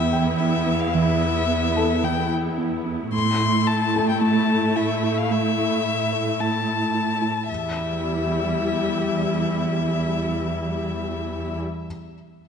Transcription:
Already playing: E2 B3 E4 E5
0.13 G5
0.39 B3 E5
0.67 B3
0.81 F5
0.94 E3 E5
1.76 E4 A4 A5
2.03 E3 G5
2.58 B3
2.86 B3
3.12 A2 A3 E4 C6
3.67 A5
3.94 A4 A5
4.09 G5
4.21 A3 A5
4.76 E4 E5
5.03 E4
5.18 F5
5.31 A3 E5
6.13 A4
6.40 A3 A5
6.95 E4
7.22 E4
7.49 E2 G3 E4 E5

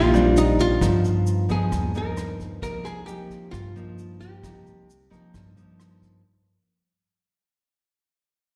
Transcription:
Already playing: A#1 A#2 F4
0.13 G3 C4 D4, closed hi-hat, shaker
0.36 D#4, closed hi-hat, shaker
0.59 F4, kick, closed hi-hat, shaker
0.81 G2 F3 B3 D#4, kick, cross-stick, closed hi-hat, shaker
1.04 closed hi-hat, shaker
1.27 closed hi-hat, shaker
1.49 F3 B3 D#4 G#4, kick, closed hi-hat, shaker
1.72 D#2 G2, kick, cross-stick, closed hi-hat, shaker
1.95 F3 B3 D#4 A#4, closed hi-hat, shaker
2.17 cross-stick, closed hi-hat, shaker
2.40 kick, closed hi-hat, shaker
2.62 C2 C3 F3 A#3 D#4 A#4, kick, closed hi-hat, shaker
2.85 G#4, cross-stick, closed hi-hat, shaker
3.06 F3 A#3 D#4 G4, closed hi-hat, shaker
3.30 kick, closed hi-hat, shaker
3.51 G2 F4, kick, cross-stick, closed hi-hat, shaker
3.76 F3 A#3 D#4, closed hi-hat, shaker
3.98 closed hi-hat, shaker
4.21 G4, kick, closed hi-hat, shaker
4.43 C2 C3 F3 A#3 D#4, kick, cross-stick, closed hi-hat, shaker
4.66 closed hi-hat, shaker
4.89 closed hi-hat, shaker
5.10 F3 A#3 D#4, kick, closed hi-hat, shaker
5.34 G2, kick, cross-stick, closed hi-hat, shaker
5.56 F3 A#3 D#4, closed hi-hat, shaker
5.80 cross-stick, closed hi-hat, shaker
6.02 kick, closed hi-hat, shaker

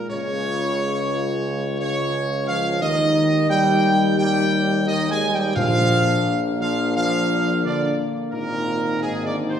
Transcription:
Already playing: G#3
0.10 C#2 C#3 F4 C#5
1.80 C#3 C#5
2.48 F3 F5
2.81 D#2 D#3 D#4 D#5
3.49 G3 G5
4.17 G3 G5
4.87 D#3 D#5
5.08 G#3 G#5
5.32 G3 G5
5.55 A#1 A#2 F3 A#3 D4 F5
6.60 F3 F5
6.95 F3 F5
7.64 D3 D5
8.32 G#1 A#2 D#4 A#4
9.02 G#2 G#4
9.25 D3 D5
9.48 C3 C5

